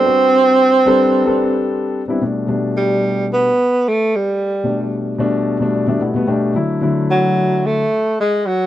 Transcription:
<<
  \new Staff \with { instrumentName = "Grand piano" } { \time 4/4 \key a \dorian \tempo 4 = 111 r1 | r1 | r2 r8 d''16 e''16 fis''8 g''8 | r1 | }
  \new Staff \with { instrumentName = "Grand piano" } { \time 4/4 \key a \dorian <g c' d' fis' b'>4~ <g c' d' fis' b'>16 r16 <g c' d' a' b'>8. <g c' d' a' b'>4~ <g c' d' a' b'>16 r16 <g b c' d' e'>16 | <b, g a d'>8 <b, g a d'>4.~ <b, g a d'>16 r4. r16 | r8 <b, g a d'>4 <b, g a d'>8. <b, g a d'>8 <b, g a d'>16 <b, g a e'>16 <b, g a b>16 <b, g a d'>8 | <d fis a e'>8 <d fis a e'>4.~ <d fis a e'>16 r4. r16 | }
  \new Staff \with { instrumentName = "Tenor saxophone" } { \clef bass \time 4/4 \key a \dorian c'2. r4 | r4 g4 b4 a8 g8~ | g4 r2. | r4 fis4 a4 gis8 fis8 | }
>>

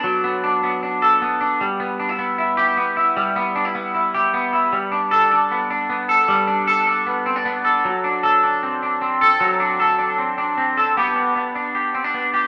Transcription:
\new Staff \with { instrumentName = "Clean electric guitar" } { \time 4/4 \key g \major \tempo 4 = 154 <fis b d' a'>8 b8 d'8 b8 d'8 a'8 b8 d'8 | g8 b8 d'16 e'16 b8 e'8 g'8 b8 e'8 | g8 b8 d'16 e'16 b8 e'8 g'8 b8 e'8 | g8 d'8 a'8 d'8 b8 d'8 b8 a'8 |
g8 d'8 a'8 d'8 b8 c'16 d'16 b8 a'8 | fis8 d'8 a'8 d'8 c'8 d'8 c'8 a'8 | fis8 d'8 a'8 d'8 c'8 d'8 c'8 a'8 | <b g'>8 d'8 b8 d'8 g'8 c'16 d'16 b8 g'8 | }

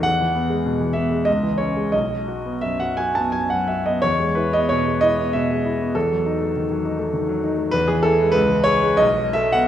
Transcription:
<<
  \new Staff \with { instrumentName = "Grand piano" } { \time 3/4 \key e \major \tempo 4 = 94 fis''4. e''8 dis''8 cis''8 | dis''4 e''16 fis''16 gis''16 a''16 gis''16 fis''16 e''16 dis''16 | cis''8 b'16 dis''16 cis''8 dis''8 e''4 | a'2~ a'8 r8 |
b'16 gis'16 a'8 b'8 cis''8 dis''8 e''16 fis''16 | }
  \new Staff \with { instrumentName = "Grand piano" } { \clef bass \time 3/4 \key e \major e,16 e16 b16 gis16 b,16 e16 b16 gis16 cis,16 e16 cis'16 gis16 | b,,16 fis16 fis'16 b16 fis,16 fis16 fis'16 b16 fis,16 fis16 fis'16 b16 | e,16 gis16 e'16 b16 b,16 gis16 e'16 b16 b,16 gis16 e'16 b16 | e,16 fis16 dis'16 a16 dis16 fis16 dis'16 a16 dis16 fis16 dis'16 a16 |
e,16 e16 e'16 gis16 cis,16 e16 gis'16 gis16 b,,16 fis16 a'16 b16 | }
>>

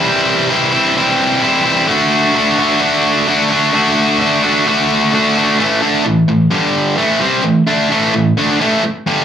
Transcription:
\new Staff \with { instrumentName = "Distorted electric guitar" } { \time 4/4 \key a \dorian \tempo 4 = 130 <c e g c' e'>4 <e g c' e'>8 <g c' e'>8 <c e g c' e'>4 <e g c' e'>8 <g c' e'>8 | <d a d' fis'>4 <d a d' fis'>8 <a d' fis'>8 <d a d' fis'>4 <d a d' fis'>8 <a d' fis'>8 | <d a d' fis'>4 <d a d' fis'>8 <a d' fis'>8 <d a d' fis'>4 <d a d' fis'>8 <a d' fis'>8 | <a, e a>8 <d a d'>8 <a, e>8 <a, e>8 <g, d g>4 <a, e a>8 <c g c'>8 |
<a, e>8 <d a d'>8 <a, e a>8 <a, e>8 <d a d'>8 <a, e a>8 r8 <g, d g>8 | }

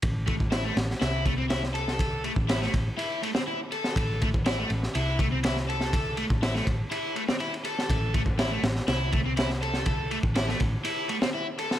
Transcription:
<<
  \new Staff \with { instrumentName = "Overdriven electric guitar" } { \time 4/4 \key a \minor \tempo 4 = 122 r8 a16 r16 e'16 a16 r8 e'8 a16 c'16 e'16 r16 a'8~ | a'8 a16 r16 e'16 a16 r8 e'8 a16 c'16 e'16 r16 a'8~ | a'8 a16 r16 e'16 a16 r8 e'8 a16 c'16 e'16 r16 a'8~ | a'8 a16 r16 e'16 a16 r8 e'8 a16 c'16 e'16 r16 a'8~ |
a'8 a16 r16 e'16 a16 r8 e'8 a16 c'16 e'16 r16 a'8~ | a'8 a16 r16 e'16 a16 r8 e'8 a16 c'16 e'16 r16 a'8 | }
  \new Staff \with { instrumentName = "Picked electric bass" } { \clef bass \time 4/4 \key a \minor a,,4~ a,,16 r16 a,,16 r16 c,2~ | c,8 r16 a,,8 r16 a,,16 r2 r16 | a,,4~ a,,16 r16 a,,16 r16 c,2~ | c,8 r16 a,,8 r16 a,,16 r2 r16 |
a,,4~ a,,16 r16 a,,16 r16 c,2~ | c,8 r16 a,,8 r16 a,,16 r2 r16 | }
  \new DrumStaff \with { instrumentName = "Drums" } \drummode { \time 4/4 <bd cymr>8 <bd cymr>16 bd16 <cymr sn>8 <cymr sn>16 sn16 <cymr sn>8 <bd cymr>8 <cymr sn>16 sn16 cymr16 sn16 | <bd cymr>8 cymr16 bd16 <cymr sn>16 sn16 <bd cymr>8 cymr8 cymr16 sn16 r8 cymr16 sn16 | <bd cymr>8 <bd cymr>16 bd16 <cymr sn>8 cymr16 sn16 cymr8 <bd cymr>8 <cymr sn>16 sn16 cymr16 sn16 | <bd cymr>8 cymr16 bd16 <cymr sn>16 sn16 <bd cymr>8 cymr8 cymr16 sn16 cymr16 cymr16 cymr16 sn16 |
<bd cymr>8 <bd cymr>16 bd16 <cymr sn>8 <cymr sn>16 sn16 <cymr sn>8 <bd cymr>8 <cymr sn>16 sn16 cymr16 sn16 | <bd cymr>8 cymr16 bd16 <cymr sn>16 sn16 <bd cymr>8 cymr8 cymr16 sn16 r8 cymr16 sn16 | }
>>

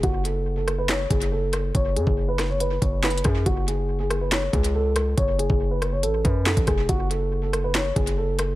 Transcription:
<<
  \new Staff \with { instrumentName = "Grand piano" } { \time 4/4 \key fis \minor \tempo 4 = 140 fis'8 a'8. a'8 b'16 cis''8 gis'8 a'4 | cis''8 gis'8. b'8 cis''16 b'8 cis''8 b'8 gis'8 | fis'8 gis'8. gis'8 b'16 cis''8 gis'8 a'4 | cis''8 gis'8. b'8 cis''16 a'8 b'8 a'8 gis'8 |
fis'8 a'8. a'8 b'16 cis''8 gis'8 a'4 | }
  \new Staff \with { instrumentName = "808-style bass" } { \clef bass \time 4/4 \key fis \minor fis,,2~ fis,,8 fis,,4. | fis,,8 fis,16 fis,,4.~ fis,,16 fis,,4 fis,8 | fis,,2~ fis,,8 cis,4. | fis,,8. fis,,4~ fis,,16 a,,8 fis,8. a,,16 eis,,8 |
fis,,2~ fis,,8 fis,,4. | }
  \new DrumStaff \with { instrumentName = "Drums" } \drummode { \time 4/4 <hh bd>8 hh8 r8 <hh ss>8 <hc hh sn>8 <hh bd>16 hh16 r8 <hh ss>8 | <hh bd>8 hh16 bd16 r8 <hh ss sn>8 hh8 <hh bd>8 \tuplet 3/2 { <hc hh sn>16 hh16 hh16 <hh bd ss>16 r16 r16 } | <hh bd>8 hh8 r8 <hh ss>8 <hc hh sn>8 <hh bd>16 hh16 r8 <hh ss>8 | <hh bd>8 hh16 bd16 r8 <hh ss>8 hh8 <hh bd>8 <hc hh sn>16 <hh bd>16 <hh bd ss>8 |
<hh bd>8 hh8 r8 <hh ss>8 <hc hh sn>8 <hh bd>16 hh16 r8 <hh ss>8 | }
>>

